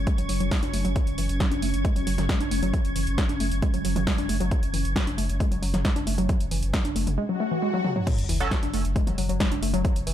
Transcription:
Already playing: F#3 C#4
0.07 G#3, kick, closed hi-hat
0.18 F#1 F#3, closed hi-hat
0.29 F#1 F#3, open hi-hat
0.40 F#1 F#3, closed hi-hat
0.51 G#3, kick, snare, open hi-hat
0.63 F#1 D4, closed hi-hat
0.74 F#1 A3, open hi-hat
0.85 F#1 F#3, closed hi-hat
0.96 F#3, kick, closed hi-hat
1.07 F#1, closed hi-hat
1.18 F#1 E3, open hi-hat
1.29 F#1, closed hi-hat
1.40 F#3, kick, snare, closed hi-hat
1.51 F#1 D4, closed hi-hat
1.62 F#1 A3, open hi-hat
1.74 F#1, closed hi-hat
1.85 G#3, kick, closed hi-hat
1.96 F#1 F#3, closed hi-hat
2.07 F#1 F#3, open hi-hat
2.18 F#1 F#3, snare, closed hi-hat, mid tom
2.29 G#3, kick, snare, closed hi-hat
2.40 F#1 D4, closed hi-hat
2.51 F#1 A3, open hi-hat
2.63 F#1 F#3, closed hi-hat
2.73 F#3, kick, closed hi-hat
2.85 F#1, closed hi-hat
2.96 F#1 E3, open hi-hat
3.07 F#1, closed hi-hat
3.18 F#3, kick, snare, closed hi-hat
3.29 F#1 D4, closed hi-hat
3.40 F#1 A3, open hi-hat
3.52 F#1, closed hi-hat
3.62 G#3, kick, closed hi-hat
3.74 F#1 F#3, closed hi-hat
3.85 F#1 F#3, open hi-hat
3.96 F#1 F#3, closed hi-hat, mid tom
4.07 G#3, kick, snare, open hi-hat
4.18 F#1 D4, closed hi-hat
4.29 F#1 A3, open hi-hat
4.40 F#1 F#3, closed hi-hat
4.51 F#3, kick, closed hi-hat
4.63 F#1, closed hi-hat
4.73 F#1 E3, open hi-hat
4.85 F#1, closed hi-hat
4.96 F#3, kick, snare, closed hi-hat
5.07 F#1 D4, closed hi-hat
5.18 F#1 A3, open hi-hat
5.29 F#1, closed hi-hat
5.40 G#3, kick, closed hi-hat
5.51 F#1 F#3, closed hi-hat
5.62 F#1 F#3, open hi-hat
5.74 F#1 F#3, snare, closed hi-hat, mid tom
5.85 G#3, kick, snare, closed hi-hat
5.96 F#1 D4, closed hi-hat
6.07 F#1 A3, open hi-hat
6.18 F#1 F#3, closed hi-hat
6.29 F#3, kick, closed hi-hat
6.40 F#1, closed hi-hat
6.51 F#1 E3, open hi-hat
6.63 F#1, closed hi-hat
6.74 F#3, kick, snare, closed hi-hat
6.85 F#1 D4, closed hi-hat
6.96 F#1 A3, open hi-hat
7.07 F#1, closed hi-hat, mid tom
7.18 G#3, swell
7.29 F#3
7.40 A3
7.51 E3
7.62 G#3
7.74 F#3, high tom
7.85 F#3, mid tom
7.96 F#3, mid tom
8.07 F#3 C#4, kick, closed hi-hat, crash, sub drop
8.18 F#1, closed hi-hat
8.29 F#1 E3, open hi-hat
8.40 F#1 F#3 C#4 A4, closed hi-hat
8.51 F#3, kick, snare, closed hi-hat
8.63 F#1 D4, closed hi-hat
8.74 F#1 A3, open hi-hat
8.85 F#1, closed hi-hat
8.96 G#3, kick, closed hi-hat
9.07 F#1 F#3, closed hi-hat, mid tom
9.18 F#1 F#3, open hi-hat
9.29 F#1 F#3, closed hi-hat
9.40 G#3, kick, snare, closed hi-hat
9.52 F#1 D4, closed hi-hat
9.63 F#1 A3, open hi-hat
9.74 F#1 F#3, closed hi-hat
9.85 F#3, kick, closed hi-hat
9.96 F#1, closed hi-hat
10.07 F#1 E3, open hi-hat

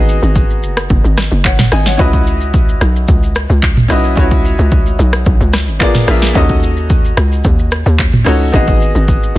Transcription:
Already playing: G#1 B3 D#4 F#4 G#4 D#5
0.09 shaker
0.23 G#1, shaker
0.35 kick, shaker
0.50 shaker
0.63 F#1, shaker
0.77 cross-stick, shaker
0.90 F#1, kick, shaker
1.04 G#1, shaker
1.17 cross-stick, snare, shaker
1.32 F#1, shaker
1.45 C#5 F#5, kick, clap, shaker
1.59 snare, mid tom, shaker
1.72 G#1 D#5 G#5, cross-stick, open hi-hat, shaker
1.86 C#5 F#5, snare, shaker
1.97 C#2 C#4 E4 F#4 B4 D#5, kick, shaker
2.13 kick, shaker
2.27 shaker
2.41 shaker
2.54 kick, shaker
2.69 shaker
2.81 B1, cross-stick, shaker
2.96 shaker
3.08 C#2, kick, shaker
3.23 shaker
3.35 cross-stick, shaker
3.50 C#2, shaker
3.63 kick, clap, shaker
3.77 mid tom, shaker
3.88 B1 C#4 E4 F#4 B4 D#5, cross-stick, open hi-hat, shaker
4.04 shaker
4.15 C#2 C#4 D#4 F#4 B4 C#5, kick, shaker
4.23 E4
4.31 kick, shaker
4.45 shaker
4.59 C#2, shaker
4.72 kick, shaker
4.86 shaker
4.99 B1, shaker
5.13 cross-stick, shaker
5.26 B1, kick, shaker
5.41 C#2, shaker
5.53 cross-stick, snare, shaker
5.68 G#1, shaker
5.79 B3 F4 G#4 A#4 D5, kick, clap, shaker
5.95 snare, mid tom, shaker
6.07 A#1 B3 F4 G#4 A#4 E5, cross-stick, open hi-hat, shaker
6.22 snare, shaker
6.34 D#2 C#4 D#4 F#4 A4 D#5, kick, shaker
6.49 kick, shaker
6.63 shaker
6.77 shaker
6.90 kick, shaker
7.05 shaker
7.17 C#2, cross-stick, shaker
7.32 shaker
7.44 D#2, kick, shaker
7.59 shaker
7.72 cross-stick, shaker
7.86 D#2, shaker
7.99 kick, clap, shaker
8.13 mid tom, shaker
8.24 C#2 C#4 D#4 F#4 A4 C#5, cross-stick, open hi-hat, shaker
8.40 shaker
8.52 G#1 B3 D#4 F#4 G#4 D#5, kick, shaker
8.67 kick, shaker
8.82 shaker
8.95 G#1, shaker
9.08 kick, shaker
9.23 shaker

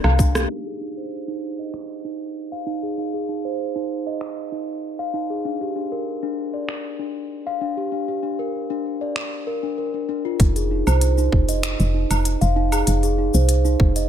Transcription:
0.04 C2 F5, cross-stick, low woodblock
0.19 D4, kick, cabasa
0.35 G4, cross-stick, cabasa
0.50 D#4
0.66 G#4
0.81 D#4
0.97 C5
1.28 D#4
1.59 D#5
1.74 finger snap
2.05 D#4
2.52 F5
2.66 D#4
2.83 G#4
2.98 D#4
3.14 G#4
3.29 D#4
3.45 C5
3.76 D#4
4.07 D#5
4.21 finger snap
4.52 D#4
4.99 F5
5.14 D#4
5.30 G#4
5.45 D4
5.61 G4
5.76 D4
5.92 A#4
6.23 D4
6.54 D5
6.69 finger snap
6.99 D4
7.47 F5
7.61 D4
7.77 G4
7.92 D4
8.08 G4
8.23 D4
8.39 A#4
8.70 D4
9.01 D5
9.16 finger snap
9.47 A#4
9.63 D4
9.78 A#4
9.94 D4
10.09 D4
10.25 F4
10.40 F1 D#4, kick, closed hi-hat, cabasa
10.56 G#4, closed hi-hat, cabasa
10.71 D#4
10.87 C2 C5, cabasa, low woodblock
11.01 closed hi-hat, cabasa
11.18 D#4, cabasa
11.32 F1, kick
11.49 D#5, closed hi-hat, cabasa
11.63 finger snap, closed hi-hat, cabasa
11.80 F1, closed hi-hat, cabasa
11.94 D#4
12.10 F1, closed hi-hat, cabasa, low woodblock
12.25 closed hi-hat, cabasa
12.41 F1 F5, closed hi-hat, cabasa
12.56 D#4
12.72 G#4, closed hi-hat, cabasa, low woodblock
12.87 F1 D#4, closed hi-hat, cabasa
13.03 G#4, closed hi-hat, cabasa
13.18 D#4
13.34 C2 C5, cabasa
13.49 closed hi-hat, cabasa
13.65 D#4, cabasa
13.80 F1, kick
13.96 D#5, closed hi-hat, cabasa

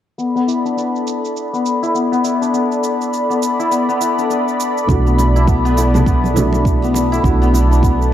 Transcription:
0.18 B3 A4 D5 B5, cabasa
0.35 B3, cabasa
0.47 E4, cabasa
0.65 D4, cabasa
0.77 B3, cabasa
0.96 cabasa
1.07 cabasa
1.25 cabasa
1.37 cabasa
1.53 B3, cabasa
1.66 cabasa
1.83 E4, cabasa
1.95 B3, cabasa
2.12 B3, cabasa
2.24 E4, cabasa
2.42 D4, cabasa
2.54 B3, cabasa
2.72 cabasa
2.84 cabasa
3.01 cabasa
3.13 cabasa
3.30 B3, cabasa
3.42 cabasa
3.59 E4, cabasa
3.71 B3, cabasa
3.89 B3, cabasa
4.01 E4, cabasa
4.18 D4, cabasa
4.30 B3, cabasa
4.48 cabasa
4.60 cabasa
4.78 cabasa
4.87 B1 E3 A3 D4 F#4, kick, cabasa
5.06 B3, cabasa
5.18 muted conga, cabasa
5.36 E4, cabasa
5.47 B3, kick, high conga, cabasa
5.65 B3, cabasa
5.77 E4, muted conga, cabasa
5.94 D4, high conga, low conga, cabasa
6.06 B3, kick, cabasa
6.24 high conga, cabasa
6.34 E3 A3 D4, high conga, low conga, cabasa
6.38 F#4
6.53 muted conga, cabasa
6.65 kick, cabasa
6.82 B3, muted conga, cabasa
6.94 muted conga, cabasa
7.12 E4, cabasa
7.23 B1 E3 A3 B3 D4 F#4, kick, cabasa
7.42 B3, cabasa
7.54 E4, muted conga, cabasa
7.71 D4, cabasa
7.83 B3, kick, high conga, cabasa
8.02 cabasa

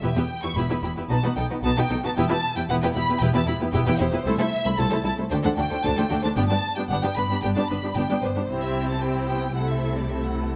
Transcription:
Already playing: E5
0.02 E1 E2 B3 E4 G4 B4
0.15 E2 B3 E4 G4 B4 G5
0.43 E2 B3 E4 G4 B4 C#6
0.56 E1 E2 B3 E4 G4 B4 B5
0.69 E2 B3 E4 G4 B4
0.82 E1 E2 B3 E4 G4 B5
0.96 E2 B3 E4 G4 B4
1.09 B1 B2 B3 D#4 F#4 B4 A5
1.23 B2 B3 D#4 F#4 B4 F#5
1.36 B1 B2 B3 D#4 A4 G5
1.50 B2 B3 D#4 F#4 B4
1.63 B1 B2 B3 D#4 F#4 B4 A5
1.77 B2 B3 D#4 F#4 B4 G5
1.90 B1 B2 B3 D#4 A4
2.03 B2 B3 D#4 F#4 B4 A5
2.17 E1 E2 B3 E4 G4 B4 G5
2.30 E2 B3 E4 G4 B4 A5
2.56 E2 B3 E4 G4 B4 G5
2.69 E1 E2 B3 E4 G4 B4 F#5
2.82 E2 B3 E4 G4 B4 G5
2.94 E1 E2 B3 E4 G4 B5
3.08 E2 B3 E4 G4 B4
3.20 E1 E2 B3 E4 G4 B4 G5
3.34 E2 B3 E4 G4 B4 A5
3.47 E1 E2 B3 E4 G4 B5
3.59 E2 B3 E4 G4 B4
3.72 E1 E2 B3 E4 G4 B4 G5
3.86 E2 B3 E4 G4 B4
3.99 E1 E2 B3 E4 G4 C5
4.12 E2 B3 E4 G4 B4
4.25 C2 A3 E4 A4 C5
4.38 C2 A3 E4 A4 C5 E5
4.65 C2 A3 E4 A4 C5 B5
4.78 C2 A3 E4 A4 C5 A5
4.90 C2 A3 E4 A4 C5
5.04 C2 A3 E4 A4 A5
5.17 C2 A3 E4 A4 C5
5.29 D2 A3 D4 A4 C5 G5
5.42 D2 A3 D4 A4 C5 F#5
5.56 D2 A3 D4 F#4 A4 G5
5.70 D2 A3 D4 A4 C5
5.83 D2 A3 D4 A4 C5 A5
5.96 D2 A3 D4 A4 C5 G5
6.09 D2 A3 D4 F#4 A4
6.22 D2 A3 D4 A4 C5 A5
6.36 G1 G2 B3 D4 G4 D5 G5
6.49 G2 B3 D4 G4 D5 A5
6.76 G2 B3 D4 G4 D5 G5
6.89 G1 G2 B3 D4 G4 D5 F#5
7.02 G2 B3 D4 G4 D5 G5
7.16 G1 G2 B3 D4 B4 B5
7.29 G2 B3 D4 G4 D5
7.42 G1 G2 B3 D4 G4 D5 G5
7.56 G2 B3 D4 G4 D5 A5
7.69 G1 G2 B3 D4 B4 B5
7.82 G2 B3 D4 G4 D5
7.95 G1 G2 B3 D4 G4 D5 G5
8.09 G2 B3 D4 G4 D5
8.22 G1 G2 B3 D4 B4 C5
8.35 G2 B3 D4 G4 D5
8.49 C2 C3 C4 E4 G4 C5
8.62 E5
8.89 A5
9.02 C4 E4 G4 C5 G5
9.28 B3 G5
9.55 C2 C3 A3 E4 A4 C5 F#5
9.69 E5
9.98 D5
10.11 A3 E4 A4 C5 E5
10.25 F#5
10.40 B4

